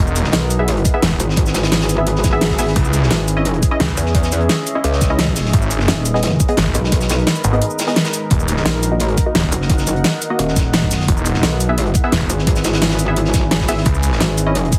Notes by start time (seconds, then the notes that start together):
0.00 E1 E4 G#4 B4
0.07 cabasa
0.16 closed hi-hat, cabasa
0.24 snare
0.32 B1, snare, closed hi-hat
0.50 closed hi-hat, cabasa
0.59 B3 G#4 E5
0.68 closed hi-hat
0.77 closed hi-hat
0.85 kick, closed hi-hat, cabasa
0.94 B3 G#4 E5
1.02 E1, snare, closed hi-hat
1.11 kick
1.19 G#1, closed hi-hat, cabasa
1.29 snare
1.36 kick, closed hi-hat
1.46 snare, cabasa
1.54 snare, closed hi-hat, cabasa
1.63 snare, closed hi-hat
1.72 G#1, snare, closed hi-hat
1.81 snare, closed hi-hat
1.89 closed hi-hat, cabasa
1.98 B3 G#4 E5
2.07 closed hi-hat
2.16 snare
2.24 kick, snare, closed hi-hat, cabasa
2.33 B3 G#4 E5
2.41 snare, closed hi-hat
2.50 kick, snare
2.59 G#1 B3 G#4 E5, snare, closed hi-hat, open hi-hat, cabasa
2.67 snare
2.76 C#2 C#4 G#4 D#5 E5, kick, closed hi-hat
2.85 cabasa
2.93 closed hi-hat, cabasa
3.02 snare
3.11 G#1, snare, closed hi-hat
3.28 closed hi-hat, cabasa
3.37 C#4 E4 D#5
3.45 closed hi-hat
3.54 closed hi-hat
3.63 kick, closed hi-hat, cabasa
3.71 C#4 E4 D#5
3.80 C#2, snare, closed hi-hat
3.89 kick
3.97 E2, closed hi-hat, cabasa
4.06 snare
4.15 kick, closed hi-hat
4.23 snare, cabasa
4.32 closed hi-hat, cabasa
4.41 closed hi-hat
4.49 snare, closed hi-hat
4.66 closed hi-hat, cabasa
4.75 C#4 E4 D#5
4.84 C#2, closed hi-hat
4.92 snare
5.01 kick, snare, closed hi-hat, cabasa
5.10 C#4 E4 D#5
5.19 snare, closed hi-hat
5.27 kick
5.36 snare, closed hi-hat, open hi-hat, cabasa
5.45 snare
5.53 G#1 G#3 D#4 A#4 B4, kick, closed hi-hat
5.62 cabasa
5.71 closed hi-hat, cabasa
5.80 snare
5.88 D#1, snare, closed hi-hat
6.05 closed hi-hat, cabasa
6.14 B3 G#4 D#5, snare
6.23 snare, closed hi-hat
6.40 kick, closed hi-hat, cabasa
6.48 B3 G#4 D#5, closed hi-hat
6.57 G#1, snare, closed hi-hat
6.66 kick
6.74 B1, closed hi-hat, cabasa
6.84 snare
6.92 kick, closed hi-hat
7.01 snare, cabasa
7.09 snare, closed hi-hat, cabasa
7.18 closed hi-hat
7.27 snare, closed hi-hat
7.36 cabasa
7.44 G#1, closed hi-hat, cabasa
7.53 B3 G#4 D#5, closed hi-hat
7.62 closed hi-hat
7.70 cabasa
7.79 snare, closed hi-hat, cabasa
7.87 B3 G#4 D#5, snare, closed hi-hat
7.96 snare, closed hi-hat
8.04 snare, closed hi-hat, cabasa
8.14 closed hi-hat, cabasa
8.30 D#1 D#5 F#5, kick, closed hi-hat
8.40 cabasa
8.48 closed hi-hat, cabasa
8.56 snare
8.66 A#1, snare, closed hi-hat
8.83 closed hi-hat, cabasa
8.92 A#3 F#4 D#5
9.00 closed hi-hat
9.09 closed hi-hat
9.17 kick, closed hi-hat, cabasa
9.26 A#3 F#4 D#5
9.35 D#1, snare, closed hi-hat
9.44 kick
9.52 F#1, closed hi-hat, cabasa
9.62 snare
9.70 kick, closed hi-hat
9.78 snare, cabasa
9.87 closed hi-hat, cabasa
9.96 closed hi-hat
10.04 snare, closed hi-hat
10.22 closed hi-hat, cabasa
10.30 A#3 F#4 D#5
10.39 D#1, closed hi-hat
10.48 snare
10.56 kick, snare, closed hi-hat, cabasa
10.73 snare, closed hi-hat
10.82 kick
10.91 snare, closed hi-hat, open hi-hat, cabasa
11.00 snare
11.08 E1 E4 G#4 B4, kick, closed hi-hat
11.17 cabasa
11.25 closed hi-hat, cabasa
11.34 snare
11.43 B1, snare, closed hi-hat
11.60 closed hi-hat, cabasa
11.69 B3 G#4 E5
11.78 closed hi-hat
11.86 closed hi-hat
11.94 kick, closed hi-hat, cabasa
12.04 B3 G#4 E5
12.12 E1, snare, closed hi-hat
12.21 kick
12.30 G#1, closed hi-hat, cabasa
12.38 snare
12.47 kick, closed hi-hat
12.55 snare, cabasa
12.64 snare, closed hi-hat, cabasa
12.73 snare, closed hi-hat
12.82 G#1, snare, closed hi-hat
12.89 snare, closed hi-hat
12.99 closed hi-hat, cabasa
13.08 B3 G#4 E5
13.16 closed hi-hat
13.25 snare
13.33 kick, snare, closed hi-hat, cabasa
13.51 snare, closed hi-hat
13.60 kick, snare
13.68 G#1 B3 G#4 E5, snare, closed hi-hat, open hi-hat, cabasa
13.77 snare
13.85 C#2 C#4 G#4 D#5 E5, kick, closed hi-hat
13.95 cabasa
14.03 closed hi-hat, cabasa
14.12 snare
14.21 G#1, snare, closed hi-hat
14.37 closed hi-hat, cabasa
14.46 C#4 E4 D#5
14.55 closed hi-hat
14.65 closed hi-hat
14.72 kick, closed hi-hat, cabasa